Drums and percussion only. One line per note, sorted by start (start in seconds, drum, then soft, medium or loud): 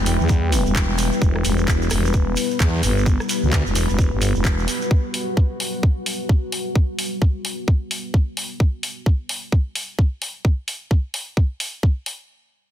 0.06 open hi-hat loud
0.06 shekere medium
0.20 shekere soft
0.29 kick loud
0.29 shekere medium
0.52 open hi-hat loud
0.52 shekere medium
0.66 shekere soft
0.75 kick loud
0.75 clap loud
0.75 shekere medium
0.98 open hi-hat loud
0.98 shekere medium
1.12 shekere soft
1.22 kick loud
1.22 shekere soft
1.36 cross-stick medium
1.45 open hi-hat loud
1.45 shekere loud
1.58 shekere soft
1.68 kick loud
1.68 clap loud
1.68 shekere medium
1.82 shekere soft
1.90 cross-stick medium
1.90 open hi-hat loud
1.90 shekere medium
2.05 shekere soft
2.13 kick loud
2.13 shekere medium
2.37 open hi-hat loud
2.37 shekere medium
2.51 shekere soft
2.60 kick loud
2.60 clap loud
2.60 shekere medium
2.83 open hi-hat loud
2.83 shekere medium
2.98 shekere soft
3.06 kick loud
3.06 shekere soft
3.20 cross-stick medium
3.20 shekere soft
3.29 open hi-hat loud
3.29 shekere medium
3.42 shekere soft
3.52 kick loud
3.52 clap loud
3.52 shekere medium
3.66 shekere soft
3.75 open hi-hat loud
3.75 shekere loud
3.89 shekere soft
3.99 kick loud
3.99 shekere medium
4.22 open hi-hat loud
4.22 shekere medium
4.35 shekere soft
4.45 kick loud
4.45 clap loud
4.45 shekere medium
4.59 shekere soft
4.68 open hi-hat loud
4.68 shekere medium
4.82 shekere soft
4.91 kick loud
5.14 open hi-hat medium
5.37 kick loud
5.60 open hi-hat loud
5.83 kick loud
6.06 open hi-hat loud
6.29 kick loud
6.52 open hi-hat loud
6.75 kick loud
6.99 open hi-hat medium
7.22 kick loud
7.45 open hi-hat loud
7.68 kick loud
7.91 open hi-hat loud
8.14 kick medium
8.37 open hi-hat medium
8.60 kick loud
8.83 open hi-hat medium
9.06 kick medium
9.29 open hi-hat loud
9.52 kick loud
9.75 open hi-hat medium
9.99 kick medium
10.22 open hi-hat medium
10.45 kick loud
10.68 open hi-hat medium
10.91 kick medium
11.14 open hi-hat loud
11.37 kick loud
11.60 open hi-hat medium
11.83 kick loud
12.06 open hi-hat medium